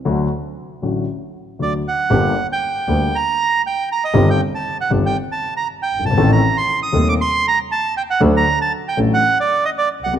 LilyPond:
<<
  \new Staff \with { instrumentName = "Bandoneon" } { \time 4/4 \key d \mixolydian \tempo 4 = 118 r2. d''8 fis''8~ | \key g \minor fis''8. g''4~ g''16 bes''4 g''8 bes''16 ees''16~ | ees''16 g''8 a''8 fis''8 g''8 a''8 bes''8 g''8 a''16~ | a''16 bes''8 c'''8 ees'''8 d'''16 c'''8 bes''8 a''8 g''16 fis''16~ |
fis''16 bes''8 a''8 g''8 fis''8 d''8 ees''16 d''8 fis''8 | }
  \new Staff \with { instrumentName = "Grand piano" } { \clef bass \time 4/4 \key d \mixolydian <d, d fis a fis'>8 r4 <a,, a, d fis a fis'>8 r4 <d, d fis a fis'>8 r8 | \key g \minor <g,, g, d g bes g'>8 r4 <d, d g bes g'>8 r2 | <g,, g, ees g c' g'>8 r4 <g,, g, ees g c' g'>8 r4. r32 fis,,32 g,,32 aes,,32 | <a,, a, ees a c' a'>8 r4 <ees,, ees, ees a c' a'>8 r2 |
<d, d fis a d' a'>8 r4 <a,, a, fis a d' a'>8 r4. r32 b,,32 c,32 r32 | }
  \new Staff \with { instrumentName = "Double bass" } { \clef bass \time 4/4 \key d \mixolydian r1 | \key g \minor g,,8 r4 d,8 r2 | g,,8 r4 g,,8 r4. g,,8 | a,,8 r4 ees,8 r2 |
d,8 r4 a,,8 r4. c,8 | }
>>